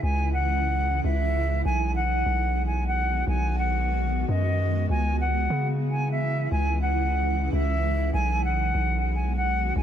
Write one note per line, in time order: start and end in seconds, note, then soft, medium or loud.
0.00 1.00 C#2 loud
0.00 1.62 C#3 medium
0.00 1.62 E3 medium
0.00 8.10 G#3 medium
0.00 1.62 E4 medium
0.00 0.31 G#5 loud
0.33 1.00 F#5 medium
1.04 1.63 C#2 loud
1.04 1.61 E5 medium
1.65 2.23 B1 loud
1.65 4.86 D#3 medium
1.65 4.86 B3 medium
1.65 4.86 F#4 medium
1.65 1.93 G#5 loud
1.95 2.62 F#5 medium
2.26 3.23 B1 loud
2.66 2.84 G#5 medium
2.87 3.25 F#5 medium
3.27 4.25 B1 loud
3.27 3.56 G#5 loud
3.58 4.25 F#5 medium
4.29 4.87 F#2 loud
4.29 4.86 D#5 medium
4.89 5.48 C#2 loud
4.89 8.11 C#3 medium
4.89 8.11 E3 medium
4.89 8.11 E4 medium
4.89 5.18 G#5 loud
5.20 5.68 F#5 medium
5.50 6.47 C#3 loud
5.91 6.09 G#5 medium
6.11 6.49 E5 loud
6.51 7.49 C#2 loud
6.51 6.80 G#5 medium
6.82 7.49 F#5 medium
7.53 8.11 C#2 loud
7.53 8.10 E5 medium
8.13 8.72 B1 loud
8.13 9.83 D#3 medium
8.13 9.83 G#3 medium
8.13 9.83 B3 medium
8.13 9.83 F#4 medium
8.13 8.42 G#5 loud
8.44 9.11 F#5 medium
8.74 9.72 B1 loud
9.15 9.33 G#5 medium
9.36 9.74 F#5 medium
9.76 9.83 B1 loud
9.76 9.83 G#5 loud